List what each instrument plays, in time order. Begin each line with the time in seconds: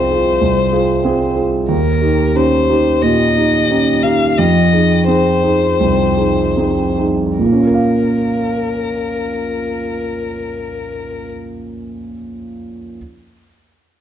Already playing: grand piano C2 C4 F4 G#4, violin C5
0.10 grand piano F4 G#4
0.41 grand piano C2
0.72 grand piano F4 G#4
1.05 grand piano C4 F4 G#4
1.36 grand piano F4 G#4
1.68 grand piano D#2, violin A#4
2.01 grand piano D#4 G4
2.35 grand piano C#4 D#4 G4, violin C5
2.69 grand piano D#4 G4
3.02 grand piano A#2, violin D#5
3.37 grand piano D#4 G4
3.70 grand piano C#4 D#4 G4
4.03 grand piano D#4 G4, violin F5
4.38 grand piano F2, violin D#5
4.72 grand piano D#4 G#4
5.08 grand piano C4 D#4 G#4, violin C5
5.44 grand piano D#4 G#4
5.80 grand piano C2
6.17 grand piano D#4 G#4
6.57 grand piano C4 D#4 G#4
6.98 grand piano D#4 G#4
7.38 grand piano A#2, violin A#4
7.46 grand piano A#3
7.53 grand piano C#4
7.60 grand piano F4
7.67 grand piano A#4
7.74 grand piano F5